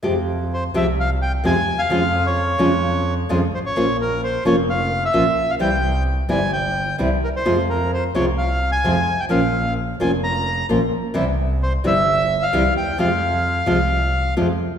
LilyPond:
<<
  \new Staff \with { instrumentName = "Bandoneon" } { \time 4/4 \key f \minor \tempo 4 = 130 r4 c''8 e''8 f''8 g''8 aes''8. f''16~ | f''8. des''2 r8. c''16 des''16~ | des''8 bes'8 c''8 des''8 f''8. e''4 f''16 | g''4 r8 aes''8 g''4 r8 bes'16 c''16~ |
c''8 bes'8 c''8 des''8 f''8. aes''4 g''16 | f''4 r8 aes''8 bes''4 r4 | r4 c''8 e''4~ e''16 f''8. g''8 | f''2. r4 | }
  \new Staff \with { instrumentName = "Nylon-string guitar" } { \clef bass \time 4/4 \key f \minor <c f aes c' g'>8 r4 <c f aes c' g'>8 r4 <c f aes c' g'>8 r8 | <des f aes des' f'>8 r4 <des f aes des' f'>8 r4 <des f aes des' f'>8 r8 | <f bes des' f'>8 r4 <f bes des' f'>8 r4 <f bes des' f'>8 r8 | <c e g c' e'>8 r4 <c e g c' e'>8 r4 <c e g c' e'>8 r8 |
<c f aes c' f'>8 r4 <c f aes c' f'>8 r4 <c f aes c' f'>8 r8 | <f bes des' f'>8 r4 <f bes des' f'>8 r4 <f bes des' f'>8 r8 | <c e g c' e'>8 r4 <c e g c' e'>8 r4 <c e g c' e'>8 r8 | <c f aes c' f'>8 r4 <c f aes c' f'>8 r4 <c f aes c' f'>8 r8 | }
  \new Staff \with { instrumentName = "Double bass" } { \clef bass \time 4/4 \key f \minor f,4. c,4. f,8 ees,8 | f,4. f,4. f,8 aes,,8 | bes,,4. f,,4. bes,,8 bes,,8 | c,4. g,,4. c,8 r8 |
f,4. c,4. f,8 r8 | bes,,4. f,,4. bes,,8 r8 | c,4. g,,4. c,8 ees,8 | f,4. c,4. f,8 r8 | }
>>